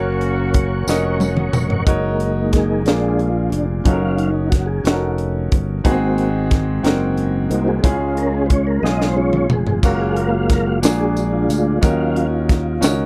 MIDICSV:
0, 0, Header, 1, 6, 480
1, 0, Start_track
1, 0, Key_signature, 6, "major"
1, 0, Tempo, 663717
1, 1353, Time_signature, 6, 3, 24, 8
1, 9443, End_track
2, 0, Start_track
2, 0, Title_t, "Tonewheel organ"
2, 0, Program_c, 0, 16
2, 0, Note_on_c, 0, 70, 60
2, 0, Note_on_c, 0, 73, 55
2, 0, Note_on_c, 0, 78, 56
2, 0, Note_on_c, 0, 85, 69
2, 1328, Note_off_c, 0, 73, 0
2, 1328, Note_off_c, 0, 85, 0
2, 1341, Note_off_c, 0, 70, 0
2, 1341, Note_off_c, 0, 78, 0
2, 1349, Note_on_c, 0, 56, 44
2, 1357, Note_on_c, 0, 63, 53
2, 1358, Note_on_c, 0, 58, 44
2, 1829, Note_on_c, 0, 68, 102
2, 2041, Note_off_c, 0, 56, 0
2, 2045, Note_off_c, 0, 63, 0
2, 2046, Note_off_c, 0, 58, 0
2, 2067, Note_on_c, 0, 56, 56
2, 2073, Note_on_c, 0, 62, 52
2, 2077, Note_on_c, 0, 65, 58
2, 2296, Note_off_c, 0, 65, 0
2, 2305, Note_on_c, 0, 65, 86
2, 2325, Note_off_c, 0, 68, 0
2, 2388, Note_off_c, 0, 56, 0
2, 2392, Note_off_c, 0, 62, 0
2, 2531, Note_off_c, 0, 65, 0
2, 2534, Note_on_c, 0, 62, 78
2, 2646, Note_off_c, 0, 62, 0
2, 2778, Note_on_c, 0, 61, 81
2, 2789, Note_on_c, 0, 54, 49
2, 2802, Note_on_c, 0, 77, 56
2, 3017, Note_on_c, 0, 63, 84
2, 3110, Note_off_c, 0, 54, 0
2, 3112, Note_off_c, 0, 61, 0
2, 3116, Note_off_c, 0, 77, 0
2, 3247, Note_off_c, 0, 63, 0
2, 3255, Note_on_c, 0, 66, 76
2, 3371, Note_on_c, 0, 68, 85
2, 3387, Note_off_c, 0, 66, 0
2, 3499, Note_on_c, 0, 66, 77
2, 3505, Note_off_c, 0, 68, 0
2, 3728, Note_off_c, 0, 66, 0
2, 4232, Note_on_c, 0, 58, 52
2, 4238, Note_on_c, 0, 60, 45
2, 4241, Note_on_c, 0, 66, 55
2, 4551, Note_off_c, 0, 58, 0
2, 4554, Note_off_c, 0, 60, 0
2, 4556, Note_off_c, 0, 66, 0
2, 5425, Note_on_c, 0, 58, 43
2, 5428, Note_on_c, 0, 60, 44
2, 5434, Note_on_c, 0, 63, 78
2, 5436, Note_on_c, 0, 66, 48
2, 5554, Note_on_c, 0, 68, 92
2, 5556, Note_off_c, 0, 63, 0
2, 5644, Note_off_c, 0, 58, 0
2, 5646, Note_off_c, 0, 60, 0
2, 5650, Note_off_c, 0, 66, 0
2, 5662, Note_off_c, 0, 68, 0
2, 5665, Note_on_c, 0, 56, 54
2, 5665, Note_on_c, 0, 61, 50
2, 5675, Note_on_c, 0, 65, 59
2, 5785, Note_off_c, 0, 65, 0
2, 5794, Note_on_c, 0, 65, 76
2, 5916, Note_off_c, 0, 65, 0
2, 5916, Note_on_c, 0, 70, 96
2, 6037, Note_off_c, 0, 70, 0
2, 6037, Note_on_c, 0, 68, 87
2, 6118, Note_off_c, 0, 68, 0
2, 6120, Note_on_c, 0, 72, 71
2, 6151, Note_off_c, 0, 72, 0
2, 6159, Note_on_c, 0, 73, 87
2, 6269, Note_on_c, 0, 70, 99
2, 6279, Note_off_c, 0, 73, 0
2, 6360, Note_off_c, 0, 56, 0
2, 6360, Note_off_c, 0, 61, 0
2, 6387, Note_on_c, 0, 75, 112
2, 6394, Note_off_c, 0, 70, 0
2, 6566, Note_off_c, 0, 75, 0
2, 6573, Note_on_c, 0, 72, 71
2, 6627, Note_on_c, 0, 56, 48
2, 6628, Note_off_c, 0, 72, 0
2, 6630, Note_on_c, 0, 61, 46
2, 6635, Note_on_c, 0, 65, 53
2, 6636, Note_on_c, 0, 73, 96
2, 6845, Note_off_c, 0, 56, 0
2, 6847, Note_off_c, 0, 61, 0
2, 6850, Note_off_c, 0, 65, 0
2, 6879, Note_on_c, 0, 68, 87
2, 6881, Note_off_c, 0, 73, 0
2, 7099, Note_off_c, 0, 68, 0
2, 7113, Note_on_c, 0, 56, 51
2, 7117, Note_on_c, 0, 58, 47
2, 7121, Note_on_c, 0, 70, 83
2, 7122, Note_on_c, 0, 77, 55
2, 7240, Note_off_c, 0, 70, 0
2, 7240, Note_on_c, 0, 68, 73
2, 7348, Note_off_c, 0, 68, 0
2, 7364, Note_on_c, 0, 70, 88
2, 7446, Note_on_c, 0, 65, 65
2, 7451, Note_off_c, 0, 70, 0
2, 7474, Note_off_c, 0, 65, 0
2, 7479, Note_on_c, 0, 66, 83
2, 7599, Note_off_c, 0, 66, 0
2, 7599, Note_on_c, 0, 70, 86
2, 7708, Note_off_c, 0, 70, 0
2, 7718, Note_on_c, 0, 66, 92
2, 7804, Note_off_c, 0, 56, 0
2, 7806, Note_off_c, 0, 58, 0
2, 7809, Note_off_c, 0, 77, 0
2, 7831, Note_off_c, 0, 66, 0
2, 7832, Note_on_c, 0, 56, 53
2, 7835, Note_on_c, 0, 62, 52
2, 7840, Note_on_c, 0, 66, 62
2, 7952, Note_on_c, 0, 68, 91
2, 8065, Note_off_c, 0, 66, 0
2, 8074, Note_on_c, 0, 66, 78
2, 8076, Note_off_c, 0, 68, 0
2, 8128, Note_off_c, 0, 66, 0
2, 8193, Note_on_c, 0, 65, 83
2, 8524, Note_off_c, 0, 56, 0
2, 8526, Note_off_c, 0, 62, 0
2, 8545, Note_on_c, 0, 54, 51
2, 8552, Note_on_c, 0, 77, 64
2, 8553, Note_on_c, 0, 61, 46
2, 8868, Note_off_c, 0, 54, 0
2, 8872, Note_off_c, 0, 77, 0
2, 8873, Note_off_c, 0, 61, 0
2, 9365, Note_off_c, 0, 65, 0
2, 9443, End_track
3, 0, Start_track
3, 0, Title_t, "Grand piano"
3, 0, Program_c, 1, 0
3, 0, Note_on_c, 1, 61, 74
3, 0, Note_on_c, 1, 66, 68
3, 0, Note_on_c, 1, 70, 72
3, 0, Note_on_c, 1, 73, 78
3, 46, Control_c, 1, 64, 127
3, 564, Note_off_c, 1, 66, 0
3, 565, Note_off_c, 1, 61, 0
3, 567, Note_off_c, 1, 70, 0
3, 569, Note_off_c, 1, 73, 0
3, 636, Note_on_c, 1, 61, 77
3, 636, Note_on_c, 1, 66, 65
3, 642, Note_on_c, 1, 70, 64
3, 644, Note_on_c, 1, 75, 78
3, 1284, Note_off_c, 1, 61, 0
3, 1284, Note_off_c, 1, 66, 0
3, 1288, Note_off_c, 1, 70, 0
3, 1288, Note_off_c, 1, 75, 0
3, 1351, Note_on_c, 1, 63, 89
3, 1355, Note_on_c, 1, 66, 74
3, 1358, Note_on_c, 1, 70, 81
3, 1361, Note_on_c, 1, 73, 82
3, 1362, Control_c, 1, 64, 0
3, 1479, Control_c, 1, 64, 127
3, 2002, Note_off_c, 1, 63, 0
3, 2004, Note_off_c, 1, 66, 0
3, 2005, Note_off_c, 1, 70, 0
3, 2007, Note_off_c, 1, 73, 0
3, 2070, Note_on_c, 1, 62, 62
3, 2076, Note_on_c, 1, 65, 57
3, 2077, Note_on_c, 1, 46, 61
3, 2081, Note_on_c, 1, 68, 57
3, 2082, Note_on_c, 1, 70, 68
3, 2083, Control_c, 1, 64, 0
3, 2199, Control_c, 1, 64, 127
3, 2721, Note_off_c, 1, 62, 0
3, 2724, Note_off_c, 1, 65, 0
3, 2726, Note_off_c, 1, 68, 0
3, 2727, Note_off_c, 1, 70, 0
3, 2765, Note_off_c, 1, 46, 0
3, 2784, Note_on_c, 1, 61, 73
3, 2788, Note_on_c, 1, 63, 64
3, 2789, Note_on_c, 1, 66, 62
3, 2794, Note_on_c, 1, 69, 58
3, 2801, Control_c, 1, 64, 0
3, 2839, Note_off_c, 1, 69, 0
3, 2841, Note_on_c, 1, 70, 76
3, 2917, Control_c, 1, 64, 127
3, 3438, Note_off_c, 1, 61, 0
3, 3440, Note_off_c, 1, 63, 0
3, 3441, Note_off_c, 1, 66, 0
3, 3466, Note_off_c, 1, 70, 0
3, 3508, Note_on_c, 1, 61, 61
3, 3513, Note_on_c, 1, 63, 52
3, 3514, Note_on_c, 1, 66, 59
3, 3517, Note_on_c, 1, 69, 52
3, 3561, Note_off_c, 1, 69, 0
3, 3565, Note_on_c, 1, 70, 70
3, 4160, Note_off_c, 1, 61, 0
3, 4162, Note_off_c, 1, 63, 0
3, 4163, Note_off_c, 1, 66, 0
3, 4188, Note_off_c, 1, 70, 0
3, 4224, Note_on_c, 1, 59, 67
3, 4225, Note_on_c, 1, 63, 80
3, 4230, Note_on_c, 1, 44, 70
3, 4233, Note_on_c, 1, 66, 83
3, 4235, Note_on_c, 1, 68, 100
3, 4240, Control_c, 1, 64, 0
3, 4270, Note_on_c, 1, 60, 94
3, 4274, Note_off_c, 1, 59, 0
3, 4363, Control_c, 1, 64, 127
3, 4879, Note_off_c, 1, 63, 0
3, 4883, Note_off_c, 1, 66, 0
3, 4883, Note_off_c, 1, 68, 0
3, 4901, Note_off_c, 1, 60, 0
3, 4922, Note_off_c, 1, 44, 0
3, 4941, Note_on_c, 1, 60, 76
3, 4945, Note_on_c, 1, 63, 68
3, 4947, Note_on_c, 1, 66, 72
3, 4951, Note_on_c, 1, 70, 86
3, 5597, Note_off_c, 1, 60, 0
3, 5599, Note_off_c, 1, 63, 0
3, 5600, Note_off_c, 1, 66, 0
3, 5602, Note_off_c, 1, 70, 0
3, 5666, Note_on_c, 1, 56, 69
3, 5670, Note_on_c, 1, 61, 69
3, 5670, Note_on_c, 1, 64, 56
3, 5672, Note_on_c, 1, 49, 59
3, 5677, Note_on_c, 1, 68, 85
3, 5682, Control_c, 1, 64, 0
3, 5718, Note_off_c, 1, 64, 0
3, 5720, Note_on_c, 1, 65, 66
3, 5819, Control_c, 1, 64, 127
3, 6320, Note_off_c, 1, 56, 0
3, 6322, Note_off_c, 1, 61, 0
3, 6325, Note_off_c, 1, 68, 0
3, 6346, Note_off_c, 1, 65, 0
3, 6363, Note_off_c, 1, 49, 0
3, 6386, Note_on_c, 1, 56, 62
3, 6391, Note_on_c, 1, 61, 57
3, 6391, Note_on_c, 1, 65, 56
3, 6395, Note_on_c, 1, 68, 68
3, 7040, Note_off_c, 1, 56, 0
3, 7042, Note_off_c, 1, 61, 0
3, 7042, Note_off_c, 1, 65, 0
3, 7044, Note_off_c, 1, 68, 0
3, 7107, Note_on_c, 1, 58, 72
3, 7112, Note_on_c, 1, 61, 60
3, 7116, Note_on_c, 1, 65, 67
3, 7118, Note_on_c, 1, 66, 80
3, 7121, Control_c, 1, 64, 0
3, 7231, Control_c, 1, 64, 127
3, 7760, Note_off_c, 1, 58, 0
3, 7763, Note_off_c, 1, 61, 0
3, 7765, Note_off_c, 1, 65, 0
3, 7766, Note_off_c, 1, 66, 0
3, 7826, Note_on_c, 1, 58, 66
3, 7829, Note_on_c, 1, 62, 65
3, 7831, Note_on_c, 1, 46, 58
3, 7833, Note_on_c, 1, 66, 60
3, 7835, Note_on_c, 1, 68, 78
3, 7842, Control_c, 1, 64, 0
3, 7983, Control_c, 1, 64, 127
3, 8480, Note_off_c, 1, 58, 0
3, 8482, Note_off_c, 1, 62, 0
3, 8484, Note_off_c, 1, 66, 0
3, 8485, Note_off_c, 1, 68, 0
3, 8524, Note_off_c, 1, 46, 0
3, 8544, Note_on_c, 1, 61, 74
3, 8545, Note_on_c, 1, 63, 75
3, 8548, Note_on_c, 1, 66, 70
3, 8551, Note_on_c, 1, 51, 56
3, 8556, Note_on_c, 1, 70, 88
3, 8564, Control_c, 1, 64, 0
3, 8676, Control_c, 1, 64, 127
3, 9200, Note_off_c, 1, 61, 0
3, 9200, Note_off_c, 1, 63, 0
3, 9202, Note_off_c, 1, 66, 0
3, 9206, Note_off_c, 1, 70, 0
3, 9244, Note_off_c, 1, 51, 0
3, 9263, Note_on_c, 1, 61, 81
3, 9266, Note_on_c, 1, 63, 71
3, 9269, Note_on_c, 1, 66, 74
3, 9272, Note_on_c, 1, 70, 80
3, 9443, Note_off_c, 1, 61, 0
3, 9443, Note_off_c, 1, 63, 0
3, 9443, Note_off_c, 1, 66, 0
3, 9443, Note_off_c, 1, 70, 0
3, 9443, End_track
4, 0, Start_track
4, 0, Title_t, "Horn section"
4, 0, Program_c, 2, 61
4, 0, Note_on_c, 2, 58, 61
4, 0, Note_on_c, 2, 61, 52
4, 0, Note_on_c, 2, 66, 84
4, 847, Note_off_c, 2, 61, 0
4, 849, Note_off_c, 2, 58, 0
4, 849, Note_off_c, 2, 66, 0
4, 9443, End_track
5, 0, Start_track
5, 0, Title_t, "Fingered electric bass"
5, 0, Program_c, 3, 33
5, 0, Note_on_c, 3, 30, 98
5, 605, Note_off_c, 3, 30, 0
5, 631, Note_on_c, 3, 29, 83
5, 1083, Note_off_c, 3, 29, 0
5, 1106, Note_on_c, 3, 29, 74
5, 1330, Note_off_c, 3, 29, 0
5, 1348, Note_on_c, 3, 30, 90
5, 2041, Note_off_c, 3, 30, 0
5, 2061, Note_on_c, 3, 34, 83
5, 2518, Note_off_c, 3, 34, 0
5, 2545, Note_on_c, 3, 29, 76
5, 2769, Note_off_c, 3, 29, 0
5, 2785, Note_on_c, 3, 30, 94
5, 3479, Note_off_c, 3, 30, 0
5, 3503, Note_on_c, 3, 29, 87
5, 3958, Note_off_c, 3, 29, 0
5, 3993, Note_on_c, 3, 31, 83
5, 4213, Note_off_c, 3, 31, 0
5, 4231, Note_on_c, 3, 32, 94
5, 4922, Note_off_c, 3, 32, 0
5, 4946, Note_on_c, 3, 30, 93
5, 5400, Note_off_c, 3, 30, 0
5, 5423, Note_on_c, 3, 36, 78
5, 5648, Note_off_c, 3, 36, 0
5, 5667, Note_on_c, 3, 37, 90
5, 6361, Note_off_c, 3, 37, 0
5, 6383, Note_on_c, 3, 35, 80
5, 6839, Note_off_c, 3, 35, 0
5, 6866, Note_on_c, 3, 29, 80
5, 7090, Note_off_c, 3, 29, 0
5, 7108, Note_on_c, 3, 30, 89
5, 7802, Note_off_c, 3, 30, 0
5, 7829, Note_on_c, 3, 34, 96
5, 8283, Note_off_c, 3, 34, 0
5, 8308, Note_on_c, 3, 38, 83
5, 8532, Note_off_c, 3, 38, 0
5, 8551, Note_on_c, 3, 39, 98
5, 9244, Note_off_c, 3, 39, 0
5, 9269, Note_on_c, 3, 37, 78
5, 9443, Note_off_c, 3, 37, 0
5, 9443, End_track
6, 0, Start_track
6, 0, Title_t, "Drums"
6, 153, Note_on_c, 9, 42, 49
6, 225, Note_off_c, 9, 42, 0
6, 390, Note_on_c, 9, 42, 69
6, 394, Note_on_c, 9, 36, 84
6, 463, Note_off_c, 9, 42, 0
6, 466, Note_off_c, 9, 36, 0
6, 634, Note_on_c, 9, 54, 89
6, 644, Note_on_c, 9, 38, 52
6, 706, Note_off_c, 9, 54, 0
6, 716, Note_off_c, 9, 38, 0
6, 869, Note_on_c, 9, 48, 66
6, 873, Note_on_c, 9, 54, 49
6, 941, Note_off_c, 9, 48, 0
6, 946, Note_off_c, 9, 54, 0
6, 988, Note_on_c, 9, 47, 69
6, 1060, Note_off_c, 9, 47, 0
6, 1109, Note_on_c, 9, 45, 98
6, 1111, Note_on_c, 9, 54, 50
6, 1181, Note_off_c, 9, 45, 0
6, 1184, Note_off_c, 9, 54, 0
6, 1230, Note_on_c, 9, 43, 81
6, 1302, Note_off_c, 9, 43, 0
6, 1350, Note_on_c, 9, 36, 105
6, 1351, Note_on_c, 9, 42, 76
6, 1422, Note_off_c, 9, 36, 0
6, 1423, Note_off_c, 9, 42, 0
6, 1591, Note_on_c, 9, 42, 45
6, 1663, Note_off_c, 9, 42, 0
6, 1828, Note_on_c, 9, 42, 64
6, 1830, Note_on_c, 9, 36, 76
6, 1840, Note_on_c, 9, 38, 30
6, 1900, Note_off_c, 9, 42, 0
6, 1902, Note_off_c, 9, 36, 0
6, 1913, Note_off_c, 9, 38, 0
6, 2067, Note_on_c, 9, 42, 81
6, 2081, Note_on_c, 9, 38, 99
6, 2139, Note_off_c, 9, 42, 0
6, 2154, Note_off_c, 9, 38, 0
6, 2310, Note_on_c, 9, 42, 37
6, 2382, Note_off_c, 9, 42, 0
6, 2548, Note_on_c, 9, 42, 60
6, 2620, Note_off_c, 9, 42, 0
6, 2787, Note_on_c, 9, 42, 77
6, 2788, Note_on_c, 9, 36, 96
6, 2859, Note_off_c, 9, 42, 0
6, 2861, Note_off_c, 9, 36, 0
6, 3026, Note_on_c, 9, 42, 49
6, 3098, Note_off_c, 9, 42, 0
6, 3268, Note_on_c, 9, 42, 67
6, 3269, Note_on_c, 9, 36, 83
6, 3281, Note_on_c, 9, 38, 28
6, 3340, Note_off_c, 9, 42, 0
6, 3342, Note_off_c, 9, 36, 0
6, 3353, Note_off_c, 9, 38, 0
6, 3509, Note_on_c, 9, 42, 84
6, 3523, Note_on_c, 9, 38, 113
6, 3581, Note_off_c, 9, 42, 0
6, 3596, Note_off_c, 9, 38, 0
6, 3748, Note_on_c, 9, 42, 42
6, 3821, Note_off_c, 9, 42, 0
6, 3990, Note_on_c, 9, 42, 60
6, 3993, Note_on_c, 9, 36, 94
6, 4062, Note_off_c, 9, 42, 0
6, 4065, Note_off_c, 9, 36, 0
6, 4229, Note_on_c, 9, 36, 99
6, 4231, Note_on_c, 9, 42, 77
6, 4302, Note_off_c, 9, 36, 0
6, 4303, Note_off_c, 9, 42, 0
6, 4470, Note_on_c, 9, 42, 52
6, 4542, Note_off_c, 9, 42, 0
6, 4708, Note_on_c, 9, 42, 69
6, 4710, Note_on_c, 9, 36, 80
6, 4720, Note_on_c, 9, 38, 31
6, 4780, Note_off_c, 9, 42, 0
6, 4782, Note_off_c, 9, 36, 0
6, 4793, Note_off_c, 9, 38, 0
6, 4950, Note_on_c, 9, 42, 79
6, 4965, Note_on_c, 9, 38, 96
6, 5022, Note_off_c, 9, 42, 0
6, 5037, Note_off_c, 9, 38, 0
6, 5189, Note_on_c, 9, 42, 44
6, 5261, Note_off_c, 9, 42, 0
6, 5429, Note_on_c, 9, 42, 58
6, 5501, Note_off_c, 9, 42, 0
6, 5668, Note_on_c, 9, 36, 101
6, 5671, Note_on_c, 9, 42, 90
6, 5741, Note_off_c, 9, 36, 0
6, 5743, Note_off_c, 9, 42, 0
6, 5909, Note_on_c, 9, 42, 51
6, 5981, Note_off_c, 9, 42, 0
6, 6147, Note_on_c, 9, 42, 65
6, 6149, Note_on_c, 9, 36, 81
6, 6219, Note_off_c, 9, 42, 0
6, 6222, Note_off_c, 9, 36, 0
6, 6404, Note_on_c, 9, 38, 60
6, 6477, Note_off_c, 9, 38, 0
6, 6520, Note_on_c, 9, 38, 60
6, 6592, Note_off_c, 9, 38, 0
6, 6747, Note_on_c, 9, 47, 67
6, 6819, Note_off_c, 9, 47, 0
6, 6869, Note_on_c, 9, 45, 96
6, 6941, Note_off_c, 9, 45, 0
6, 6990, Note_on_c, 9, 43, 83
6, 7063, Note_off_c, 9, 43, 0
6, 7110, Note_on_c, 9, 36, 103
6, 7112, Note_on_c, 9, 55, 71
6, 7114, Note_on_c, 9, 54, 44
6, 7182, Note_off_c, 9, 36, 0
6, 7184, Note_off_c, 9, 55, 0
6, 7186, Note_off_c, 9, 54, 0
6, 7352, Note_on_c, 9, 42, 51
6, 7424, Note_off_c, 9, 42, 0
6, 7590, Note_on_c, 9, 42, 66
6, 7592, Note_on_c, 9, 36, 88
6, 7603, Note_on_c, 9, 38, 32
6, 7663, Note_off_c, 9, 42, 0
6, 7664, Note_off_c, 9, 36, 0
6, 7675, Note_off_c, 9, 38, 0
6, 7833, Note_on_c, 9, 42, 78
6, 7833, Note_on_c, 9, 54, 104
6, 7848, Note_on_c, 9, 38, 104
6, 7905, Note_off_c, 9, 42, 0
6, 7905, Note_off_c, 9, 54, 0
6, 7920, Note_off_c, 9, 38, 0
6, 8075, Note_on_c, 9, 54, 46
6, 8077, Note_on_c, 9, 42, 42
6, 8147, Note_off_c, 9, 54, 0
6, 8149, Note_off_c, 9, 42, 0
6, 8317, Note_on_c, 9, 42, 67
6, 8317, Note_on_c, 9, 54, 47
6, 8389, Note_off_c, 9, 42, 0
6, 8389, Note_off_c, 9, 54, 0
6, 8552, Note_on_c, 9, 42, 86
6, 8554, Note_on_c, 9, 36, 104
6, 8560, Note_on_c, 9, 54, 43
6, 8624, Note_off_c, 9, 42, 0
6, 8626, Note_off_c, 9, 36, 0
6, 8632, Note_off_c, 9, 54, 0
6, 8797, Note_on_c, 9, 42, 53
6, 8869, Note_off_c, 9, 42, 0
6, 9035, Note_on_c, 9, 36, 82
6, 9035, Note_on_c, 9, 42, 63
6, 9047, Note_on_c, 9, 38, 33
6, 9107, Note_off_c, 9, 42, 0
6, 9108, Note_off_c, 9, 36, 0
6, 9120, Note_off_c, 9, 38, 0
6, 9273, Note_on_c, 9, 42, 87
6, 9276, Note_on_c, 9, 54, 101
6, 9288, Note_on_c, 9, 38, 112
6, 9346, Note_off_c, 9, 42, 0
6, 9348, Note_off_c, 9, 54, 0
6, 9360, Note_off_c, 9, 38, 0
6, 9443, End_track
0, 0, End_of_file